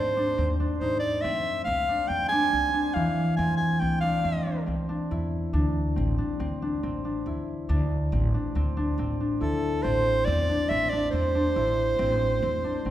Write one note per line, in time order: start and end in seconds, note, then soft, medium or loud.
0.00 0.35 G#2 medium
0.00 0.37 C4 medium
0.00 0.16 D4 medium
0.00 0.53 C5 medium
0.17 0.59 D4 medium
0.38 0.78 D#2 medium
0.38 1.24 C4 medium
0.60 0.87 D4 medium
0.78 1.21 G#2 medium
0.78 1.95 D#4 medium
0.78 0.99 C5 medium
0.99 1.23 D5 loud
1.21 1.64 F2 medium
1.21 1.67 C4 loud
1.21 1.64 E5 loud
1.65 1.87 C2 loud
1.65 2.09 C4 medium
1.65 2.10 F5 loud
1.89 2.31 D4 medium
2.08 2.50 F2 medium
2.08 2.52 C4 medium
2.08 2.28 G5 loud
2.29 2.73 D4 medium
2.29 2.95 G#5 loud
2.52 2.93 C2 medium
2.52 3.38 C4 medium
2.74 4.02 D4 medium
2.94 3.35 F2 medium
2.94 5.59 E3 medium
2.94 3.36 F5 medium
3.36 3.78 F2 loud
3.36 3.81 C4 medium
3.36 3.57 G#5 loud
3.57 3.81 G#5 medium
3.80 4.02 C2 medium
3.80 4.24 C4 medium
3.80 4.00 G5 medium
4.01 4.46 D4 medium
4.01 4.63 F5 medium
4.24 4.64 F2 medium
4.24 4.66 C4 medium
4.46 4.88 D4 medium
4.66 5.07 C2 medium
4.66 5.96 C4 medium
4.89 5.53 D4 medium
5.11 5.51 E2 medium
5.11 7.26 E4 medium
5.53 5.93 D2 loud
5.53 6.18 D4 medium
5.96 6.17 A1 medium
5.96 6.39 C4 medium
6.18 6.62 D4 medium
6.40 6.80 D2 medium
6.40 6.83 C4 medium
6.62 7.04 D4 medium
6.83 7.23 A1 medium
6.83 8.12 C4 medium
7.05 7.68 D4 medium
7.26 7.66 D2 medium
7.26 9.40 E4 medium
7.69 8.09 D2 loud
7.69 8.34 D4 loud
8.12 8.32 A1 loud
8.12 8.55 C4 medium
8.34 8.76 D4 medium
8.55 8.95 D2 medium
8.55 8.98 C4 medium
8.77 9.20 D4 medium
8.98 9.38 A1 medium
8.98 9.84 C4 medium
9.21 10.49 D4 medium
9.41 9.81 D2 medium
9.41 11.55 E4 medium
9.41 9.84 A4 medium
9.83 10.24 A1 loud
9.83 10.27 C4 loud
9.83 10.27 C5 loud
10.25 10.47 E2 loud
10.25 10.70 C4 medium
10.25 10.71 D5 loud
10.49 10.92 D4 medium
10.69 11.10 A1 medium
10.69 11.13 C4 medium
10.69 10.91 E5 loud
10.89 11.34 D4 medium
10.89 11.10 D5 loud
11.11 11.53 E2 medium
11.11 11.98 C4 loud
11.11 12.90 C5 medium
11.35 12.64 D4 medium
11.56 11.96 A1 medium
11.56 12.90 E4 medium
11.99 12.39 A1 loud
11.99 12.42 C4 loud
12.42 12.62 E2 loud
12.42 12.85 C4 medium
12.64 12.90 D4 medium
12.85 12.90 A1 medium
12.85 12.90 C4 medium